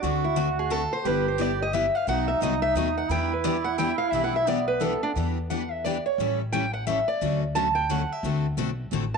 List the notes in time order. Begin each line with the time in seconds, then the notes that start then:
0.02 D2 D3 A3 C4 F#4 A4
0.24 E4
0.36 D3 A3 C4 F#4 A4
0.59 G#4
0.70 D3 A3 C4 F#4 A4
0.93 C5
1.04 G1 G3 B3 E4 G4 B4
1.28 C5
1.38 G3 B3 E4 G4 D5
1.62 D#5
1.74 G3 B3 E4 G4 E5
1.95 F5
2.07 B1 B2 D#3 F#3 A3 B3 D#4 F#4 A4 F#5
2.28 E5
2.41 C2 B2 D#3 F#3 A3 B3 D#4 F#4 A4 D#5
2.62 E5
2.75 D#2 B2 D#3 F#3 A3 B3 D#4 F#4 A4 D#5
2.98 F#5
3.09 E2 E3 G3 B3 D4 E4 G4 B4 G5
3.33 B4
3.44 E3 G3 B3 D4 E4 G4 B4 D5
3.64 F#5
3.78 E3 G3 B3 D4 E4 G4 B4 G5
3.98 F5
4.12 B1 E3 G3 B3 D4 E4 G4 B4 E5
4.24 F#5
4.36 E5
4.47 E3 G3 B3 D4 E4 G4 B4 D5
4.68 B4
4.80 E3 G3 B3 D4 E4 G4 A4 B4
5.03 D4
5.16 E2 E3 G3 B3 D4 E4 G4 B4
5.50 E3 G3 B3 D4 E4 G4 B4 F#5
5.71 E5
5.84 E3 G3 B3 D4 E4 G4 B4 D5
6.06 C#5
6.18 A1 E3 G3 C#4 E4 A4
6.52 E3 G3 C#4 E4 A4 G5
6.73 F#5
6.87 E3 G3 C#4 E4 A4 E5
7.08 D5
7.21 D2 D3 F#3 A3 C#4 F#4 A4
7.55 D3 F#3 A3 C#4 F#4 A4 A5
7.75 G5
7.89 D3 F#3 A3 C#4 F#4 A4 F#5
8.12 E5
8.23 D2 D3 A3 C4 F#4 A4
8.57 B1 D3 A3 C4 F#4 A4
8.92 A1 D3 A3 C4 F#4 A4
9.14 A5